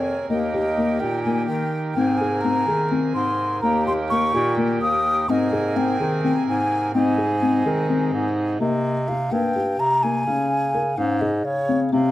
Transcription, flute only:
0.00 0.27 C#5 medium
0.29 1.02 D#5 medium
1.00 1.22 G5 medium
1.23 1.46 G#5 medium
1.46 1.80 G5 medium
1.94 2.19 G5 medium
2.17 2.43 G#5 medium
2.41 2.90 A#5 medium
3.14 3.59 C6 medium
3.62 3.84 A#5 medium
3.87 3.93 C6 medium
4.10 4.54 C#6 medium
4.82 5.31 D#6 medium
5.29 5.78 D#5 medium
5.77 6.24 G5 medium
6.24 6.46 G5 medium
6.48 6.91 G#5 medium
6.94 8.33 G#5 medium
8.61 9.10 D#5 medium
9.08 9.33 F5 medium
9.32 9.81 G5 medium
9.80 10.04 A#5 medium
10.03 10.99 G#5 medium
10.98 11.22 F5 medium
11.21 11.46 D#5 medium
11.45 11.80 C#5 medium
11.93 12.11 F5 medium

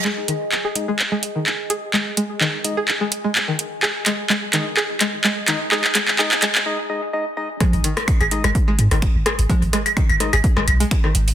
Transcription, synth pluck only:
0.05 0.07 G#3 loud
0.28 0.32 D#3 medium
0.65 0.67 G#4 loud
0.88 0.90 G#3 loud
1.12 1.14 G#3 loud
1.36 1.39 D#3 medium
1.70 1.72 G#4 loud
1.94 1.96 G#3 loud
2.17 2.19 G#3 loud
2.41 2.45 D#3 medium
2.77 2.79 G#4 loud
3.01 3.03 G#3 loud
3.24 3.26 G#3 loud
3.48 3.51 D#3 medium
3.83 3.85 G#4 loud
4.06 4.08 G#3 medium
4.30 4.32 G#3 medium
4.53 4.57 D#3 medium
4.77 4.79 G#4 loud
5.01 5.03 G#3 medium
5.24 5.27 G#3 loud
5.48 5.52 D#3 medium
5.72 5.74 G#4 loud
5.95 5.97 G#3 loud
6.19 6.21 G#4 loud
6.42 6.45 G#3 loud
7.61 7.63 G#3 loud
7.84 7.88 D#3 medium
8.21 8.23 G#4 loud
8.44 8.46 G#3 loud
8.68 8.70 G#3 loud
8.91 8.95 D#3 medium
9.26 9.28 G#4 loud
9.49 9.52 G#3 loud
9.73 9.75 G#3 loud
9.97 10.01 D#3 medium
10.33 10.35 G#4 loud
10.57 10.59 G#3 loud
10.80 10.82 G#3 loud
11.04 11.07 D#3 medium

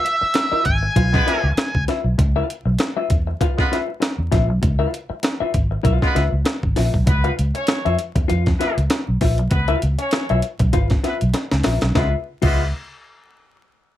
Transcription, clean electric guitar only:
0.05 muted clean electric guitar stroke soft
0.21 muted clean electric guitar stroke soft
0.35 muted clean electric guitar stroke soft
0.52 0.65 F4 medium
0.52 0.65 B4 medium
0.52 0.65 E5 medium
0.66 muted clean electric guitar stroke soft
0.83 muted clean electric guitar stroke soft
0.96 1.15 F4 medium
0.96 1.13 B4 medium
0.96 1.12 F5 medium
1.13 muted clean electric guitar stroke medium
1.26 1.42 F4 medium
1.26 1.42 B4 medium
1.26 1.43 E5 medium
1.44 muted clean electric guitar stroke soft
1.58 muted clean electric guitar stroke soft
1.88 2.04 F4 medium
1.88 2.04 B4 medium
1.88 2.03 E5 medium
2.04 muted clean electric guitar stroke medium
2.18 muted clean electric guitar stroke medium
2.36 2.47 F4 medium
2.36 2.47 B4 medium
2.36 2.48 F5 medium
2.48 muted clean electric guitar stroke soft
2.66 muted clean electric guitar stroke soft
2.80 muted clean electric guitar stroke soft
2.97 3.09 F4 medium
2.97 3.10 B4 medium
2.97 3.10 E5 medium
3.27 muted clean electric guitar stroke medium
3.41 3.60 F4 medium
3.41 3.57 B4 medium
3.41 3.57 F5 loud
3.58 muted clean electric guitar stroke soft
3.72 3.87 F4 medium
3.72 3.87 B4 medium
3.72 3.87 E5 medium
3.88 muted clean electric guitar stroke medium
4.00 muted clean electric guitar stroke soft
4.32 4.47 F4 medium
4.32 4.47 B4 medium
4.32 4.48 E5 medium
4.49 muted clean electric guitar stroke medium
4.62 muted clean electric guitar stroke soft
4.79 4.91 F4 medium
4.79 4.92 B4 medium
4.79 4.93 F5 medium
4.92 muted clean electric guitar stroke soft
5.10 muted clean electric guitar stroke medium
5.23 muted clean electric guitar stroke soft
5.40 5.53 F4 medium
5.40 5.53 B4 medium
5.40 5.54 E5 medium
5.71 muted clean electric guitar stroke soft
5.83 6.05 F4 medium
5.83 6.01 B4 medium
5.83 6.01 F5 loud
6.01 muted clean electric guitar stroke medium
6.15 6.31 F4 medium
6.15 6.31 B4 medium
6.15 6.30 E5 medium
6.31 muted clean electric guitar stroke soft
6.45 muted clean electric guitar stroke soft
6.76 6.92 F4 medium
6.76 6.92 B4 medium
6.76 6.92 E5 medium
6.93 muted clean electric guitar stroke soft
7.06 muted clean electric guitar stroke soft
7.24 7.36 F4 medium
7.24 7.36 B4 medium
7.24 7.38 F5 medium
7.37 muted clean electric guitar stroke soft
7.55 muted clean electric guitar stroke soft
7.68 muted clean electric guitar stroke soft
7.85 7.98 F4 medium
7.85 7.98 B4 medium
7.85 7.98 E5 medium
7.99 muted clean electric guitar stroke soft
8.16 muted clean electric guitar stroke medium
8.28 8.48 F4 medium
8.28 8.46 B4 medium
8.28 8.46 F5 medium
8.47 muted clean electric guitar stroke medium
8.60 8.75 F4 medium
8.60 8.76 B4 medium
8.60 8.76 E5 medium
8.78 muted clean electric guitar stroke soft
8.91 muted clean electric guitar stroke soft
9.21 9.37 F4 medium
9.21 9.37 B4 medium
9.21 9.37 E5 medium
9.40 muted clean electric guitar stroke medium
9.52 muted clean electric guitar stroke soft
9.68 9.81 F4 medium
9.68 9.82 B4 medium
9.68 9.82 F5 medium
9.82 muted clean electric guitar stroke soft
9.99 muted clean electric guitar stroke soft
10.13 muted clean electric guitar stroke soft
10.30 10.42 F4 medium
10.30 10.42 B4 medium
10.30 10.42 E5 loud
10.43 muted clean electric guitar stroke soft
10.60 muted clean electric guitar stroke medium
10.73 10.93 F4 medium
10.73 10.90 B4 loud
10.73 10.90 F5 medium
10.90 muted clean electric guitar stroke soft
11.03 11.20 F4 medium
11.03 11.20 B4 medium
11.03 11.19 E5 medium
11.20 muted clean electric guitar stroke soft
11.34 muted clean electric guitar stroke soft
11.64 11.80 F4 medium
11.64 11.81 B4 medium
11.64 11.80 E5 medium
11.81 muted clean electric guitar stroke medium
11.95 12.15 F4 medium
11.95 12.16 B4 medium
11.95 12.16 E5 medium
12.42 12.59 F4 medium
12.42 12.60 B4 medium
12.42 12.60 E5 medium

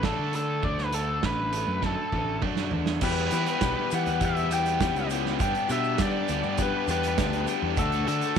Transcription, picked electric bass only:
0.00 0.15 A1 medium
0.19 0.60 D3 medium
0.63 1.19 D2 medium
1.23 1.64 A1 medium
1.68 1.95 F#2 medium
2.12 2.40 A1 medium
2.43 2.69 F#2 medium
2.73 2.99 E2 medium
3.02 3.29 E2 loud
3.32 3.46 E3 medium
3.62 3.75 B1 medium
3.92 4.08 E3 medium
4.07 4.95 E2 medium
4.95 5.36 C#2 medium
5.40 5.54 G2 loud
5.70 5.96 B2 medium
5.99 6.13 G3 medium
6.29 6.43 D2 loud
6.44 6.71 G2 medium
6.88 7.15 E2 medium
7.18 7.45 D2 medium
7.62 7.76 E2 loud
7.78 8.04 D2 loud
8.08 8.21 D3 medium

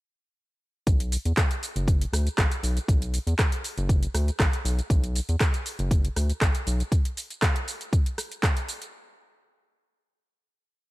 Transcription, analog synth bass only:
0.87 1.17 B1 loud
1.25 1.33 E2 medium
1.76 2.05 F#1 loud
2.13 2.29 D2 medium
2.38 2.46 B1 medium
2.63 2.79 B1 medium
2.88 3.19 B1 medium
3.27 3.34 E2 medium
3.78 4.07 F#1 loud
4.14 4.30 D2 medium
4.40 4.48 B1 medium
4.65 4.81 B1 loud
4.90 5.20 B1 loud
5.29 5.36 E2 medium
5.79 6.09 F#1 loud
6.16 6.32 D2 medium
6.41 6.49 B1 medium
6.67 6.82 B1 loud

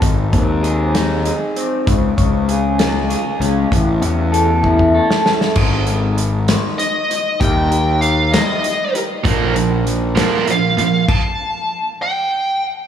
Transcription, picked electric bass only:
0.02 0.35 G#1 medium
0.33 1.30 D#2 medium
1.87 2.11 C#2 medium
2.18 3.14 C#2 medium
3.40 3.65 C#2 medium
3.71 4.01 A1 medium
4.01 4.98 E2 medium
5.56 6.52 G#1 medium
7.41 8.37 D#2 medium
9.25 10.20 A#1 medium

